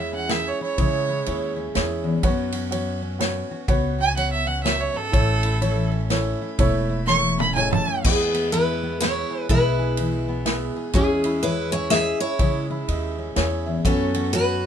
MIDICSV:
0, 0, Header, 1, 7, 480
1, 0, Start_track
1, 0, Key_signature, 4, "major"
1, 0, Tempo, 484262
1, 771, Time_signature, 3, 2, 24, 8
1, 14532, End_track
2, 0, Start_track
2, 0, Title_t, "Fiddle"
2, 0, Program_c, 0, 110
2, 0, Note_on_c, 0, 76, 84
2, 132, Note_off_c, 0, 76, 0
2, 147, Note_on_c, 0, 78, 83
2, 307, Note_on_c, 0, 76, 92
2, 322, Note_off_c, 0, 78, 0
2, 471, Note_on_c, 0, 73, 93
2, 486, Note_off_c, 0, 76, 0
2, 617, Note_off_c, 0, 73, 0
2, 622, Note_on_c, 0, 73, 100
2, 1548, Note_off_c, 0, 73, 0
2, 3973, Note_on_c, 0, 80, 98
2, 4125, Note_off_c, 0, 80, 0
2, 4131, Note_on_c, 0, 78, 87
2, 4278, Note_off_c, 0, 78, 0
2, 4284, Note_on_c, 0, 76, 87
2, 4431, Note_on_c, 0, 78, 91
2, 4446, Note_off_c, 0, 76, 0
2, 4587, Note_off_c, 0, 78, 0
2, 4593, Note_on_c, 0, 76, 94
2, 4764, Note_on_c, 0, 73, 92
2, 4779, Note_off_c, 0, 76, 0
2, 4921, Note_on_c, 0, 69, 114
2, 4936, Note_off_c, 0, 73, 0
2, 5858, Note_off_c, 0, 69, 0
2, 7000, Note_on_c, 0, 85, 106
2, 7316, Note_off_c, 0, 85, 0
2, 7343, Note_on_c, 0, 83, 93
2, 7476, Note_off_c, 0, 83, 0
2, 7482, Note_on_c, 0, 80, 110
2, 7642, Note_off_c, 0, 80, 0
2, 7657, Note_on_c, 0, 81, 99
2, 7965, Note_off_c, 0, 81, 0
2, 14532, End_track
3, 0, Start_track
3, 0, Title_t, "Grand piano"
3, 0, Program_c, 1, 0
3, 0, Note_on_c, 1, 64, 63
3, 0, Note_on_c, 1, 68, 60
3, 0, Note_on_c, 1, 73, 72
3, 194, Note_off_c, 1, 64, 0
3, 200, Note_off_c, 1, 68, 0
3, 201, Note_off_c, 1, 73, 0
3, 288, Note_on_c, 1, 64, 64
3, 294, Note_on_c, 1, 68, 63
3, 296, Note_on_c, 1, 76, 72
3, 676, Note_off_c, 1, 64, 0
3, 679, Note_off_c, 1, 68, 0
3, 680, Note_off_c, 1, 76, 0
3, 766, Note_on_c, 1, 64, 77
3, 775, Note_on_c, 1, 68, 69
3, 778, Note_on_c, 1, 73, 85
3, 1156, Note_off_c, 1, 64, 0
3, 1160, Note_off_c, 1, 68, 0
3, 1161, Note_off_c, 1, 73, 0
3, 1259, Note_on_c, 1, 64, 77
3, 1263, Note_on_c, 1, 68, 68
3, 1265, Note_on_c, 1, 73, 82
3, 1642, Note_off_c, 1, 64, 0
3, 1644, Note_off_c, 1, 68, 0
3, 1645, Note_off_c, 1, 73, 0
3, 1730, Note_on_c, 1, 64, 79
3, 1736, Note_on_c, 1, 68, 72
3, 1743, Note_on_c, 1, 73, 83
3, 2118, Note_off_c, 1, 64, 0
3, 2121, Note_off_c, 1, 68, 0
3, 2124, Note_off_c, 1, 73, 0
3, 2212, Note_on_c, 1, 66, 88
3, 2214, Note_on_c, 1, 71, 82
3, 2223, Note_on_c, 1, 73, 98
3, 2599, Note_off_c, 1, 66, 0
3, 2600, Note_off_c, 1, 71, 0
3, 2604, Note_off_c, 1, 73, 0
3, 2684, Note_on_c, 1, 66, 75
3, 2687, Note_on_c, 1, 71, 66
3, 2694, Note_on_c, 1, 73, 83
3, 3075, Note_off_c, 1, 66, 0
3, 3077, Note_off_c, 1, 71, 0
3, 3080, Note_off_c, 1, 73, 0
3, 3162, Note_on_c, 1, 66, 77
3, 3166, Note_on_c, 1, 71, 73
3, 3176, Note_on_c, 1, 73, 85
3, 3554, Note_off_c, 1, 66, 0
3, 3556, Note_off_c, 1, 71, 0
3, 3561, Note_off_c, 1, 73, 0
3, 3650, Note_on_c, 1, 66, 91
3, 3654, Note_on_c, 1, 71, 85
3, 3663, Note_on_c, 1, 73, 102
3, 4038, Note_off_c, 1, 66, 0
3, 4040, Note_off_c, 1, 71, 0
3, 4045, Note_off_c, 1, 73, 0
3, 4133, Note_on_c, 1, 66, 63
3, 4137, Note_on_c, 1, 71, 62
3, 4142, Note_on_c, 1, 73, 70
3, 4519, Note_off_c, 1, 66, 0
3, 4521, Note_off_c, 1, 71, 0
3, 4524, Note_off_c, 1, 73, 0
3, 4604, Note_on_c, 1, 71, 64
3, 4605, Note_on_c, 1, 66, 66
3, 4612, Note_on_c, 1, 73, 76
3, 4995, Note_off_c, 1, 71, 0
3, 4996, Note_off_c, 1, 66, 0
3, 4999, Note_off_c, 1, 73, 0
3, 5072, Note_on_c, 1, 64, 80
3, 5082, Note_on_c, 1, 69, 70
3, 5088, Note_on_c, 1, 73, 85
3, 5469, Note_off_c, 1, 64, 0
3, 5474, Note_off_c, 1, 69, 0
3, 5477, Note_off_c, 1, 73, 0
3, 5563, Note_on_c, 1, 64, 77
3, 5569, Note_on_c, 1, 73, 89
3, 5570, Note_on_c, 1, 69, 74
3, 5954, Note_off_c, 1, 64, 0
3, 5957, Note_off_c, 1, 73, 0
3, 5958, Note_off_c, 1, 69, 0
3, 6052, Note_on_c, 1, 64, 81
3, 6054, Note_on_c, 1, 69, 77
3, 6059, Note_on_c, 1, 73, 89
3, 6439, Note_off_c, 1, 64, 0
3, 6440, Note_off_c, 1, 69, 0
3, 6442, Note_off_c, 1, 73, 0
3, 6529, Note_on_c, 1, 64, 97
3, 6537, Note_on_c, 1, 69, 86
3, 6541, Note_on_c, 1, 73, 107
3, 6917, Note_off_c, 1, 64, 0
3, 6921, Note_off_c, 1, 69, 0
3, 6923, Note_off_c, 1, 73, 0
3, 7012, Note_on_c, 1, 64, 66
3, 7023, Note_on_c, 1, 69, 59
3, 7025, Note_on_c, 1, 73, 77
3, 7399, Note_off_c, 1, 64, 0
3, 7404, Note_off_c, 1, 69, 0
3, 7405, Note_off_c, 1, 73, 0
3, 7497, Note_on_c, 1, 64, 72
3, 7503, Note_on_c, 1, 69, 64
3, 7512, Note_on_c, 1, 73, 78
3, 7881, Note_off_c, 1, 64, 0
3, 7884, Note_off_c, 1, 69, 0
3, 7889, Note_off_c, 1, 73, 0
3, 7984, Note_on_c, 1, 64, 73
3, 7987, Note_on_c, 1, 68, 64
3, 7994, Note_on_c, 1, 71, 80
3, 8365, Note_off_c, 1, 64, 0
3, 8366, Note_off_c, 1, 68, 0
3, 8369, Note_off_c, 1, 71, 0
3, 8450, Note_on_c, 1, 64, 63
3, 8458, Note_on_c, 1, 68, 57
3, 8465, Note_on_c, 1, 71, 68
3, 8837, Note_off_c, 1, 64, 0
3, 8841, Note_off_c, 1, 68, 0
3, 8845, Note_off_c, 1, 71, 0
3, 8935, Note_on_c, 1, 64, 63
3, 8938, Note_on_c, 1, 68, 56
3, 8940, Note_on_c, 1, 71, 69
3, 9320, Note_off_c, 1, 64, 0
3, 9322, Note_off_c, 1, 68, 0
3, 9322, Note_off_c, 1, 71, 0
3, 9415, Note_on_c, 1, 64, 77
3, 9423, Note_on_c, 1, 68, 70
3, 9426, Note_on_c, 1, 71, 84
3, 9800, Note_off_c, 1, 64, 0
3, 9804, Note_off_c, 1, 68, 0
3, 9805, Note_off_c, 1, 71, 0
3, 9889, Note_on_c, 1, 64, 66
3, 9893, Note_on_c, 1, 68, 57
3, 9902, Note_on_c, 1, 71, 73
3, 10277, Note_off_c, 1, 64, 0
3, 10279, Note_off_c, 1, 68, 0
3, 10283, Note_off_c, 1, 71, 0
3, 10367, Note_on_c, 1, 64, 77
3, 10369, Note_on_c, 1, 68, 72
3, 10378, Note_on_c, 1, 71, 87
3, 10756, Note_off_c, 1, 64, 0
3, 10757, Note_off_c, 1, 68, 0
3, 10761, Note_off_c, 1, 71, 0
3, 10842, Note_on_c, 1, 64, 76
3, 10845, Note_on_c, 1, 68, 69
3, 10854, Note_on_c, 1, 73, 84
3, 11233, Note_off_c, 1, 64, 0
3, 11234, Note_off_c, 1, 68, 0
3, 11239, Note_off_c, 1, 73, 0
3, 11327, Note_on_c, 1, 64, 68
3, 11335, Note_on_c, 1, 68, 60
3, 11337, Note_on_c, 1, 73, 74
3, 11715, Note_off_c, 1, 64, 0
3, 11719, Note_off_c, 1, 68, 0
3, 11720, Note_off_c, 1, 73, 0
3, 11805, Note_on_c, 1, 64, 63
3, 11811, Note_on_c, 1, 68, 57
3, 11821, Note_on_c, 1, 75, 72
3, 12194, Note_off_c, 1, 64, 0
3, 12197, Note_off_c, 1, 68, 0
3, 12202, Note_off_c, 1, 75, 0
3, 12285, Note_on_c, 1, 64, 75
3, 12292, Note_on_c, 1, 68, 68
3, 12296, Note_on_c, 1, 73, 80
3, 12673, Note_off_c, 1, 64, 0
3, 12677, Note_off_c, 1, 68, 0
3, 12679, Note_off_c, 1, 73, 0
3, 12765, Note_on_c, 1, 64, 73
3, 12769, Note_on_c, 1, 68, 70
3, 12775, Note_on_c, 1, 75, 82
3, 13153, Note_off_c, 1, 64, 0
3, 13155, Note_off_c, 1, 68, 0
3, 13158, Note_off_c, 1, 75, 0
3, 13240, Note_on_c, 1, 64, 75
3, 13250, Note_on_c, 1, 68, 73
3, 13251, Note_on_c, 1, 73, 84
3, 13255, Note_on_c, 1, 80, 66
3, 13521, Note_off_c, 1, 80, 0
3, 13544, Note_on_c, 1, 76, 68
3, 13630, Note_off_c, 1, 64, 0
3, 13635, Note_off_c, 1, 68, 0
3, 13636, Note_off_c, 1, 73, 0
3, 13718, Note_off_c, 1, 76, 0
3, 13730, Note_on_c, 1, 66, 72
3, 13732, Note_on_c, 1, 71, 71
3, 13737, Note_on_c, 1, 73, 78
3, 14115, Note_off_c, 1, 66, 0
3, 14116, Note_off_c, 1, 71, 0
3, 14119, Note_off_c, 1, 73, 0
3, 14206, Note_on_c, 1, 66, 63
3, 14211, Note_on_c, 1, 71, 58
3, 14219, Note_on_c, 1, 73, 69
3, 14532, Note_off_c, 1, 66, 0
3, 14532, Note_off_c, 1, 71, 0
3, 14532, Note_off_c, 1, 73, 0
3, 14532, End_track
4, 0, Start_track
4, 0, Title_t, "Steel-string acoustic guitar"
4, 0, Program_c, 2, 25
4, 7974, Note_on_c, 2, 68, 79
4, 7983, Note_on_c, 2, 59, 51
4, 8420, Note_off_c, 2, 68, 0
4, 8422, Note_off_c, 2, 59, 0
4, 8448, Note_on_c, 2, 71, 96
4, 8460, Note_on_c, 2, 64, 75
4, 8902, Note_off_c, 2, 64, 0
4, 8921, Note_off_c, 2, 71, 0
4, 8925, Note_on_c, 2, 73, 95
4, 8937, Note_on_c, 2, 64, 78
4, 9381, Note_off_c, 2, 64, 0
4, 9413, Note_off_c, 2, 73, 0
4, 9417, Note_on_c, 2, 71, 77
4, 9422, Note_on_c, 2, 64, 58
4, 10624, Note_off_c, 2, 64, 0
4, 10624, Note_off_c, 2, 71, 0
4, 10852, Note_on_c, 2, 68, 73
4, 10862, Note_on_c, 2, 61, 57
4, 11303, Note_off_c, 2, 61, 0
4, 11326, Note_on_c, 2, 71, 88
4, 11335, Note_on_c, 2, 64, 74
4, 11345, Note_off_c, 2, 68, 0
4, 11602, Note_off_c, 2, 64, 0
4, 11614, Note_off_c, 2, 71, 0
4, 11618, Note_on_c, 2, 73, 90
4, 11628, Note_on_c, 2, 64, 69
4, 11794, Note_off_c, 2, 64, 0
4, 11798, Note_on_c, 2, 76, 100
4, 11803, Note_on_c, 2, 68, 80
4, 11815, Note_off_c, 2, 73, 0
4, 12075, Note_off_c, 2, 68, 0
4, 12096, Note_off_c, 2, 76, 0
4, 12097, Note_on_c, 2, 73, 80
4, 12100, Note_on_c, 2, 64, 63
4, 12544, Note_off_c, 2, 64, 0
4, 12544, Note_off_c, 2, 73, 0
4, 13731, Note_on_c, 2, 69, 74
4, 13746, Note_on_c, 2, 61, 60
4, 14175, Note_off_c, 2, 69, 0
4, 14183, Note_off_c, 2, 61, 0
4, 14203, Note_on_c, 2, 71, 94
4, 14221, Note_on_c, 2, 66, 69
4, 14532, Note_off_c, 2, 66, 0
4, 14532, Note_off_c, 2, 71, 0
4, 14532, End_track
5, 0, Start_track
5, 0, Title_t, "Steel-string acoustic guitar"
5, 0, Program_c, 3, 25
5, 0, Note_on_c, 3, 52, 62
5, 0, Note_on_c, 3, 56, 62
5, 0, Note_on_c, 3, 64, 64
5, 127, Note_on_c, 3, 61, 58
5, 257, Note_off_c, 3, 52, 0
5, 309, Note_on_c, 3, 40, 61
5, 592, Note_off_c, 3, 64, 0
5, 604, Note_on_c, 3, 64, 63
5, 742, Note_off_c, 3, 40, 0
5, 759, Note_off_c, 3, 56, 0
5, 784, Note_on_c, 3, 40, 75
5, 792, Note_on_c, 3, 56, 62
5, 1064, Note_off_c, 3, 64, 0
5, 1076, Note_on_c, 3, 64, 63
5, 1220, Note_off_c, 3, 40, 0
5, 1546, Note_off_c, 3, 61, 0
5, 1550, Note_on_c, 3, 61, 60
5, 2022, Note_on_c, 3, 40, 64
5, 2200, Note_off_c, 3, 56, 0
5, 2212, Note_off_c, 3, 40, 0
5, 2217, Note_on_c, 3, 42, 75
5, 2220, Note_off_c, 3, 64, 0
5, 2220, Note_on_c, 3, 54, 56
5, 2229, Note_on_c, 3, 59, 62
5, 2230, Note_off_c, 3, 61, 0
5, 2234, Note_on_c, 3, 61, 55
5, 2247, Note_on_c, 3, 66, 66
5, 2503, Note_off_c, 3, 66, 0
5, 2507, Note_on_c, 3, 66, 64
5, 2657, Note_off_c, 3, 42, 0
5, 2700, Note_off_c, 3, 54, 0
5, 2703, Note_on_c, 3, 54, 66
5, 2992, Note_off_c, 3, 61, 0
5, 2996, Note_on_c, 3, 61, 64
5, 3140, Note_off_c, 3, 54, 0
5, 3187, Note_on_c, 3, 49, 64
5, 3464, Note_off_c, 3, 66, 0
5, 3480, Note_on_c, 3, 66, 65
5, 3622, Note_off_c, 3, 49, 0
5, 3638, Note_off_c, 3, 59, 0
5, 3638, Note_off_c, 3, 66, 0
5, 3651, Note_on_c, 3, 42, 72
5, 3664, Note_on_c, 3, 59, 58
5, 3694, Note_off_c, 3, 61, 0
5, 3948, Note_on_c, 3, 66, 63
5, 4094, Note_off_c, 3, 42, 0
5, 4127, Note_on_c, 3, 54, 64
5, 4426, Note_on_c, 3, 61, 62
5, 4572, Note_off_c, 3, 54, 0
5, 4607, Note_on_c, 3, 42, 65
5, 4895, Note_off_c, 3, 42, 0
5, 4899, Note_on_c, 3, 44, 66
5, 5073, Note_off_c, 3, 66, 0
5, 5075, Note_off_c, 3, 59, 0
5, 5091, Note_off_c, 3, 44, 0
5, 5097, Note_on_c, 3, 45, 80
5, 5103, Note_on_c, 3, 57, 60
5, 5393, Note_on_c, 3, 64, 65
5, 5537, Note_off_c, 3, 45, 0
5, 5564, Note_on_c, 3, 52, 63
5, 5859, Note_off_c, 3, 61, 0
5, 5863, Note_on_c, 3, 61, 64
5, 6010, Note_off_c, 3, 52, 0
5, 6059, Note_on_c, 3, 40, 64
5, 6356, Note_off_c, 3, 64, 0
5, 6360, Note_on_c, 3, 64, 68
5, 6498, Note_off_c, 3, 40, 0
5, 6510, Note_off_c, 3, 61, 0
5, 6515, Note_off_c, 3, 57, 0
5, 6540, Note_on_c, 3, 45, 78
5, 6550, Note_on_c, 3, 57, 61
5, 6822, Note_off_c, 3, 64, 0
5, 6834, Note_on_c, 3, 64, 68
5, 6978, Note_off_c, 3, 45, 0
5, 7021, Note_on_c, 3, 52, 65
5, 7312, Note_on_c, 3, 61, 61
5, 7458, Note_off_c, 3, 52, 0
5, 7498, Note_on_c, 3, 44, 70
5, 7783, Note_off_c, 3, 44, 0
5, 7787, Note_on_c, 3, 42, 66
5, 7954, Note_off_c, 3, 61, 0
5, 7958, Note_off_c, 3, 57, 0
5, 7967, Note_off_c, 3, 42, 0
5, 7971, Note_on_c, 3, 40, 73
5, 7979, Note_on_c, 3, 56, 62
5, 8264, Note_on_c, 3, 59, 58
5, 8413, Note_off_c, 3, 40, 0
5, 8449, Note_on_c, 3, 52, 64
5, 8750, Note_off_c, 3, 59, 0
5, 8753, Note_on_c, 3, 59, 62
5, 8892, Note_off_c, 3, 52, 0
5, 8934, Note_on_c, 3, 47, 61
5, 9221, Note_off_c, 3, 64, 0
5, 9225, Note_on_c, 3, 68, 66
5, 9375, Note_off_c, 3, 47, 0
5, 9416, Note_on_c, 3, 40, 75
5, 9420, Note_off_c, 3, 56, 0
5, 9424, Note_on_c, 3, 56, 57
5, 9701, Note_off_c, 3, 68, 0
5, 9705, Note_on_c, 3, 68, 61
5, 9856, Note_off_c, 3, 40, 0
5, 9903, Note_on_c, 3, 52, 64
5, 10178, Note_off_c, 3, 59, 0
5, 10190, Note_on_c, 3, 59, 62
5, 10339, Note_off_c, 3, 52, 0
5, 10364, Note_on_c, 3, 47, 67
5, 10663, Note_off_c, 3, 68, 0
5, 10666, Note_on_c, 3, 68, 67
5, 10809, Note_off_c, 3, 47, 0
5, 10854, Note_on_c, 3, 40, 77
5, 10856, Note_off_c, 3, 59, 0
5, 10858, Note_off_c, 3, 56, 0
5, 10862, Note_on_c, 3, 56, 55
5, 11144, Note_off_c, 3, 68, 0
5, 11148, Note_on_c, 3, 64, 66
5, 11295, Note_off_c, 3, 40, 0
5, 11334, Note_on_c, 3, 52, 61
5, 11626, Note_on_c, 3, 61, 63
5, 11774, Note_off_c, 3, 52, 0
5, 11811, Note_on_c, 3, 40, 65
5, 12089, Note_off_c, 3, 64, 0
5, 12101, Note_on_c, 3, 64, 63
5, 12252, Note_off_c, 3, 40, 0
5, 12270, Note_off_c, 3, 56, 0
5, 12298, Note_on_c, 3, 40, 76
5, 12304, Note_on_c, 3, 56, 50
5, 12580, Note_off_c, 3, 64, 0
5, 12592, Note_on_c, 3, 64, 66
5, 12735, Note_off_c, 3, 40, 0
5, 13064, Note_off_c, 3, 61, 0
5, 13068, Note_on_c, 3, 61, 58
5, 13544, Note_on_c, 3, 40, 61
5, 13711, Note_off_c, 3, 56, 0
5, 13727, Note_off_c, 3, 40, 0
5, 13731, Note_on_c, 3, 42, 73
5, 13734, Note_off_c, 3, 64, 0
5, 13736, Note_on_c, 3, 54, 59
5, 13748, Note_off_c, 3, 61, 0
5, 13748, Note_on_c, 3, 59, 60
5, 13752, Note_on_c, 3, 61, 55
5, 13759, Note_on_c, 3, 66, 66
5, 14015, Note_off_c, 3, 66, 0
5, 14019, Note_on_c, 3, 66, 63
5, 14170, Note_off_c, 3, 42, 0
5, 14201, Note_off_c, 3, 54, 0
5, 14205, Note_on_c, 3, 54, 60
5, 14502, Note_off_c, 3, 61, 0
5, 14532, Note_off_c, 3, 54, 0
5, 14532, Note_off_c, 3, 59, 0
5, 14532, Note_off_c, 3, 66, 0
5, 14532, End_track
6, 0, Start_track
6, 0, Title_t, "Upright bass"
6, 0, Program_c, 4, 32
6, 0, Note_on_c, 4, 40, 90
6, 507, Note_off_c, 4, 40, 0
6, 780, Note_on_c, 4, 49, 78
6, 1168, Note_off_c, 4, 49, 0
6, 1262, Note_on_c, 4, 39, 85
6, 1666, Note_off_c, 4, 39, 0
6, 1747, Note_on_c, 4, 40, 85
6, 2149, Note_off_c, 4, 40, 0
6, 2214, Note_on_c, 4, 42, 91
6, 3387, Note_off_c, 4, 42, 0
6, 3653, Note_on_c, 4, 37, 83
6, 4826, Note_off_c, 4, 37, 0
6, 5091, Note_on_c, 4, 33, 93
6, 6264, Note_off_c, 4, 33, 0
6, 6531, Note_on_c, 4, 28, 83
6, 7704, Note_off_c, 4, 28, 0
6, 7976, Note_on_c, 4, 40, 85
6, 9147, Note_off_c, 4, 40, 0
6, 9413, Note_on_c, 4, 35, 79
6, 10585, Note_off_c, 4, 35, 0
6, 10847, Note_on_c, 4, 40, 86
6, 12020, Note_off_c, 4, 40, 0
6, 12286, Note_on_c, 4, 49, 76
6, 12678, Note_off_c, 4, 49, 0
6, 12768, Note_on_c, 4, 39, 82
6, 13176, Note_off_c, 4, 39, 0
6, 13251, Note_on_c, 4, 40, 83
6, 13658, Note_off_c, 4, 40, 0
6, 13727, Note_on_c, 4, 42, 86
6, 14532, Note_off_c, 4, 42, 0
6, 14532, End_track
7, 0, Start_track
7, 0, Title_t, "Drums"
7, 291, Note_on_c, 9, 38, 88
7, 291, Note_on_c, 9, 51, 57
7, 390, Note_off_c, 9, 38, 0
7, 390, Note_off_c, 9, 51, 0
7, 773, Note_on_c, 9, 51, 59
7, 775, Note_on_c, 9, 36, 109
7, 872, Note_off_c, 9, 51, 0
7, 874, Note_off_c, 9, 36, 0
7, 1252, Note_on_c, 9, 51, 58
7, 1352, Note_off_c, 9, 51, 0
7, 1736, Note_on_c, 9, 38, 85
7, 1736, Note_on_c, 9, 51, 60
7, 1835, Note_off_c, 9, 38, 0
7, 1835, Note_off_c, 9, 51, 0
7, 2212, Note_on_c, 9, 51, 64
7, 2213, Note_on_c, 9, 36, 103
7, 2311, Note_off_c, 9, 51, 0
7, 2312, Note_off_c, 9, 36, 0
7, 2502, Note_on_c, 9, 51, 62
7, 2601, Note_off_c, 9, 51, 0
7, 2697, Note_on_c, 9, 51, 64
7, 2796, Note_off_c, 9, 51, 0
7, 3177, Note_on_c, 9, 38, 85
7, 3177, Note_on_c, 9, 51, 67
7, 3276, Note_off_c, 9, 38, 0
7, 3276, Note_off_c, 9, 51, 0
7, 3650, Note_on_c, 9, 36, 116
7, 3651, Note_on_c, 9, 51, 59
7, 3749, Note_off_c, 9, 36, 0
7, 3750, Note_off_c, 9, 51, 0
7, 4137, Note_on_c, 9, 51, 59
7, 4236, Note_off_c, 9, 51, 0
7, 4614, Note_on_c, 9, 38, 89
7, 4614, Note_on_c, 9, 51, 59
7, 4713, Note_off_c, 9, 38, 0
7, 4713, Note_off_c, 9, 51, 0
7, 5090, Note_on_c, 9, 36, 114
7, 5091, Note_on_c, 9, 51, 59
7, 5189, Note_off_c, 9, 36, 0
7, 5191, Note_off_c, 9, 51, 0
7, 5382, Note_on_c, 9, 51, 60
7, 5481, Note_off_c, 9, 51, 0
7, 5569, Note_on_c, 9, 51, 61
7, 5668, Note_off_c, 9, 51, 0
7, 6048, Note_on_c, 9, 38, 85
7, 6048, Note_on_c, 9, 51, 67
7, 6148, Note_off_c, 9, 38, 0
7, 6148, Note_off_c, 9, 51, 0
7, 6529, Note_on_c, 9, 51, 69
7, 6530, Note_on_c, 9, 36, 116
7, 6628, Note_off_c, 9, 51, 0
7, 6629, Note_off_c, 9, 36, 0
7, 7010, Note_on_c, 9, 38, 60
7, 7109, Note_off_c, 9, 38, 0
7, 7334, Note_on_c, 9, 48, 75
7, 7433, Note_off_c, 9, 48, 0
7, 7496, Note_on_c, 9, 47, 76
7, 7595, Note_off_c, 9, 47, 0
7, 7658, Note_on_c, 9, 45, 95
7, 7757, Note_off_c, 9, 45, 0
7, 7977, Note_on_c, 9, 36, 112
7, 7978, Note_on_c, 9, 49, 97
7, 8076, Note_off_c, 9, 36, 0
7, 8077, Note_off_c, 9, 49, 0
7, 8271, Note_on_c, 9, 51, 57
7, 8370, Note_off_c, 9, 51, 0
7, 8460, Note_on_c, 9, 51, 58
7, 8560, Note_off_c, 9, 51, 0
7, 8939, Note_on_c, 9, 38, 82
7, 8939, Note_on_c, 9, 51, 59
7, 9038, Note_off_c, 9, 38, 0
7, 9038, Note_off_c, 9, 51, 0
7, 9408, Note_on_c, 9, 51, 59
7, 9411, Note_on_c, 9, 36, 106
7, 9508, Note_off_c, 9, 51, 0
7, 9510, Note_off_c, 9, 36, 0
7, 9884, Note_on_c, 9, 51, 63
7, 9983, Note_off_c, 9, 51, 0
7, 10366, Note_on_c, 9, 38, 84
7, 10366, Note_on_c, 9, 51, 63
7, 10465, Note_off_c, 9, 38, 0
7, 10465, Note_off_c, 9, 51, 0
7, 10838, Note_on_c, 9, 51, 65
7, 10844, Note_on_c, 9, 36, 106
7, 10937, Note_off_c, 9, 51, 0
7, 10943, Note_off_c, 9, 36, 0
7, 11138, Note_on_c, 9, 51, 59
7, 11237, Note_off_c, 9, 51, 0
7, 11325, Note_on_c, 9, 51, 60
7, 11425, Note_off_c, 9, 51, 0
7, 11804, Note_on_c, 9, 38, 84
7, 11804, Note_on_c, 9, 51, 58
7, 11903, Note_off_c, 9, 38, 0
7, 11903, Note_off_c, 9, 51, 0
7, 12282, Note_on_c, 9, 51, 60
7, 12285, Note_on_c, 9, 36, 113
7, 12382, Note_off_c, 9, 51, 0
7, 12384, Note_off_c, 9, 36, 0
7, 12772, Note_on_c, 9, 51, 56
7, 12871, Note_off_c, 9, 51, 0
7, 13245, Note_on_c, 9, 38, 82
7, 13245, Note_on_c, 9, 51, 60
7, 13344, Note_off_c, 9, 38, 0
7, 13344, Note_off_c, 9, 51, 0
7, 13726, Note_on_c, 9, 36, 107
7, 13730, Note_on_c, 9, 51, 62
7, 13825, Note_off_c, 9, 36, 0
7, 13829, Note_off_c, 9, 51, 0
7, 14020, Note_on_c, 9, 51, 61
7, 14120, Note_off_c, 9, 51, 0
7, 14208, Note_on_c, 9, 51, 60
7, 14307, Note_off_c, 9, 51, 0
7, 14532, End_track
0, 0, End_of_file